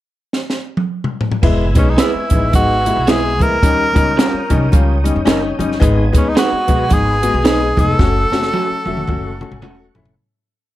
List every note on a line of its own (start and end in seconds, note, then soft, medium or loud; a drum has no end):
0.33 snare medium
0.50 snare medium
0.77 high tom medium
1.04 mid tom medium
1.21 floor tom medium
1.32 floor tom medium
1.42 1.76 E1 loud
1.42 1.64 G#3 loud
1.42 1.64 B3 medium
1.42 1.64 E4 loud
1.42 3.60 B4 medium
1.42 3.60 G#5 soft
1.42 3.60 E6 medium
1.42 kick loud
1.42 crash medium
1.75 1.94 B1 medium
1.75 1.90 G#3 medium
1.75 1.90 B3 medium
1.75 1.91 C#4 medium
1.75 1.90 D#4 medium
1.75 kick loud
1.75 closed hi-hat medium
1.75 muted conga soft
1.75 high conga medium
1.90 2.01 D#4 medium
1.97 2.19 G#3 medium
1.97 2.19 B3 medium
1.97 2.11 E4 medium
1.97 2.19 E4 medium
1.97 2.54 E4 medium
1.97 2.12 G#4 medium
1.97 2.12 B4 medium
1.97 snare loud
1.97 closed hi-hat medium
2.14 muted upright bass stroke soft
2.30 2.49 A1 medium
2.30 2.45 G#3 medium
2.30 2.46 B3 medium
2.30 2.46 D#4 medium
2.30 kick medium
2.30 closed hi-hat medium
2.30 low conga medium
2.53 2.90 G#1 medium
2.53 2.74 G#3 medium
2.53 2.74 B3 medium
2.53 2.74 D#4 medium
2.53 3.11 F#4 loud
2.53 kick medium
2.53 closed hi-hat medium
2.53 low conga medium
2.85 3.00 G#3 medium
2.85 3.00 B3 medium
2.85 3.00 E4 medium
2.85 closed hi-hat medium
2.85 muted conga soft
2.85 high conga medium
2.97 3.41 B1 medium
3.07 3.29 G#3 medium
3.07 3.29 B3 medium
3.07 3.21 E4 medium
3.07 3.29 E4 loud
3.07 3.21 G#4 medium
3.07 3.44 G#4 loud
3.07 3.21 B4 medium
3.07 snare loud
3.07 closed hi-hat medium
3.07 muted conga soft
3.07 high conga medium
3.39 3.59 D2 loud
3.39 3.55 G#3 medium
3.39 3.55 B3 medium
3.39 3.55 E4 medium
3.39 5.06 A#4 medium
3.39 kick medium
3.39 closed hi-hat medium
3.39 muted conga soft
3.39 low conga medium
3.62 3.90 D#2 medium
3.62 3.84 G3 medium
3.62 3.84 C#4 medium
3.62 3.84 D#4 medium
3.62 5.79 C#5 medium
3.62 5.80 G5 medium
3.62 5.79 D#6 medium
3.62 kick loud
3.62 closed hi-hat medium
3.93 4.14 C#2 medium
3.93 4.09 G3 medium
3.93 4.09 C#4 medium
3.93 4.10 D#4 loud
3.93 kick loud
3.93 closed hi-hat medium
3.93 muted conga soft
3.93 high conga medium
4.17 4.38 G3 medium
4.17 4.30 C#4 medium
4.17 4.38 C#4 medium
4.17 4.38 F4 medium
4.17 4.31 G4 medium
4.17 4.31 A#4 medium
4.17 snare loud
4.17 closed hi-hat medium
4.34 muted upright bass stroke soft
4.50 4.69 C2 medium
4.50 4.64 G3 medium
4.50 4.64 C#4 medium
4.50 4.64 D#4 loud
4.50 kick medium
4.50 closed hi-hat medium
4.50 muted conga soft
4.50 low conga medium
4.72 5.09 C#2 medium
4.72 4.93 G3 medium
4.72 4.93 C#4 medium
4.72 4.93 F4 medium
4.72 kick medium
4.72 closed hi-hat medium
4.72 muted conga soft
4.72 low conga medium
5.04 5.18 G3 medium
5.04 5.19 C#4 medium
5.04 5.19 D#4 medium
5.04 closed hi-hat medium
5.04 muted conga soft
5.04 high conga medium
5.16 5.25 F2 medium
5.25 5.53 F#1 medium
5.25 5.47 G3 medium
5.25 5.47 C#4 loud
5.25 5.40 C#4 medium
5.25 5.47 D#4 loud
5.25 5.40 G4 medium
5.25 5.41 A#4 loud
5.25 snare medium
5.25 closed hi-hat medium
5.25 high conga medium
5.59 5.77 G1 medium
5.59 5.73 G3 medium
5.59 5.73 C#4 medium
5.59 5.73 D#4 medium
5.59 closed hi-hat medium
5.59 muted conga soft
5.59 low conga medium
5.72 snare soft
5.80 6.09 G#1 loud
5.80 6.02 G#3 loud
5.80 6.02 B3 medium
5.80 6.02 D#4 loud
5.80 7.97 B4 medium
5.80 7.97 G#5 soft
5.80 7.97 D#6 medium
5.80 kick loud
5.80 closed hi-hat medium
5.80 muted conga soft
6.12 6.32 D#2 medium
6.12 6.27 G#3 medium
6.12 6.28 B3 medium
6.12 6.28 D#4 medium
6.12 kick loud
6.12 closed hi-hat medium
6.12 muted conga soft
6.12 high conga medium
6.17 6.30 C#4 medium
6.29 6.38 D#4 medium
6.35 6.57 G#3 medium
6.35 6.57 B3 medium
6.35 6.57 D#4 medium
6.35 6.49 D#4 medium
6.35 6.95 F#4 medium
6.35 6.50 G#4 medium
6.35 6.50 B4 loud
6.35 snare loud
6.35 closed hi-hat medium
6.35 muted conga soft
6.52 muted upright bass stroke soft
6.67 6.87 B1 medium
6.67 6.82 G#3 medium
6.67 6.82 B3 medium
6.67 6.83 F#4 medium
6.67 kick medium
6.67 closed hi-hat medium
6.67 muted conga soft
6.67 low conga medium
6.89 7.27 G#1 medium
6.89 7.11 G#3 medium
6.89 7.11 B3 medium
6.89 7.11 D#4 medium
6.89 kick medium
6.89 closed hi-hat medium
6.89 muted conga soft
6.89 low conga medium
6.94 7.47 G#4 medium
7.22 7.37 G#3 medium
7.22 7.37 B3 medium
7.22 7.37 F#4 medium
7.22 closed hi-hat medium
7.22 muted conga soft
7.22 high conga medium
7.34 7.70 B1 medium
7.43 7.66 G#3 medium
7.43 7.66 B3 medium
7.43 7.58 D#4 medium
7.43 7.66 D#4 loud
7.43 7.58 G#4 medium
7.43 7.59 B4 medium
7.43 snare loud
7.43 closed hi-hat medium
7.43 high conga medium
7.48 7.81 G#4 loud
7.76 7.96 F1 medium
7.76 7.91 G#3 medium
7.76 7.91 B3 medium
7.76 7.92 D#4 medium
7.76 9.97 A4 loud
7.76 kick medium
7.76 closed hi-hat medium
7.76 muted conga soft
7.76 low conga medium
7.98 8.26 F#1 loud
7.98 8.20 A3 medium
7.98 8.21 C#4 medium
7.98 8.21 F#4 medium
7.98 10.16 A4 medium
7.98 10.15 F#5 medium
7.98 10.16 C#6 medium
7.98 kick loud
7.98 snare soft
7.98 muted conga soft
8.30 8.50 F#1 medium
8.30 8.47 A3 loud
8.30 8.47 C#4 medium
8.30 8.47 F#4 loud
8.30 snare medium
8.30 muted conga soft
8.30 high conga medium
8.43 snare medium
8.53 8.75 A3 medium
8.53 8.67 C#4 medium
8.53 8.75 C#4 medium
8.53 8.67 F#4 medium
8.53 8.75 F#4 medium
8.53 8.68 A4 medium
8.53 high tom medium
8.70 muted upright bass stroke soft
8.86 9.05 E1 medium
8.86 9.01 A3 medium
8.86 9.01 C#4 medium
8.86 9.01 F#4 loud
8.86 8.97 E5 medium
8.86 high tom medium
8.86 muted conga soft
8.86 low conga medium
8.97 9.07 F#5 medium
8.97 mid tom medium
9.07 9.44 F#1 medium
9.07 9.30 A3 medium
9.07 9.30 C#4 medium
9.07 9.30 F#4 medium
9.07 9.39 F#5 medium
9.07 kick medium
9.07 mid tom medium
9.07 muted conga soft
9.07 low conga medium
9.41 9.55 A3 medium
9.41 9.55 C#4 medium
9.41 9.55 F#4 medium
9.41 9.52 A5 medium
9.41 mid tom medium
9.41 muted conga soft
9.41 high conga medium
9.51 9.63 A1 medium
9.51 9.62 G#5 medium
9.51 mid tom medium
9.62 9.90 E1 medium
9.62 9.84 A3 loud
9.62 9.76 C#4 medium
9.62 9.84 C#4 medium
9.62 9.77 F#4 medium
9.62 9.84 F#4 loud
9.62 9.77 A4 medium
9.62 9.93 A5 medium
9.62 mid tom loud
9.62 muted conga soft
9.62 high conga medium
9.95 10.14 F1 medium
9.95 10.10 A3 medium
9.95 10.10 C#4 medium
9.95 10.10 E4 medium
9.95 10.16 B5 medium
9.95 floor tom medium
9.95 low conga medium
10.05 floor tom medium